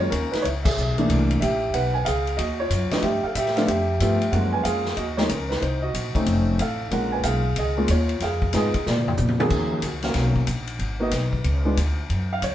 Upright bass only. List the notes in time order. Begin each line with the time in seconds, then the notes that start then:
Already playing: F#2
0.12 D#2
0.33 muted upright bass stroke
0.44 C#2
0.77 B1
1.09 C2
1.41 A1
1.74 B1
2.06 C#2
2.39 D#2
2.70 F#2
2.91 muted upright bass stroke
3.02 G2
3.23 muted upright bass stroke
3.35 A2
3.68 F2
4.00 G2
4.32 F#2
4.64 F2
4.97 D#2
5.29 C#2
5.62 C2
5.94 A#1
6.15 muted upright bass stroke
6.26 F1
6.59 A1
6.91 A#1
7.24 B1
7.56 C#2
7.89 D#2
8.20 F2
8.54 G#2
8.74 muted upright bass stroke
8.87 A#2
9.19 A#2
9.50 D#2
9.82 C#2
10.14 B1
10.48 A#1
10.79 G#1
11.12 B1
11.44 C#2
11.77 D2
12.10 F#2
12.42 C#2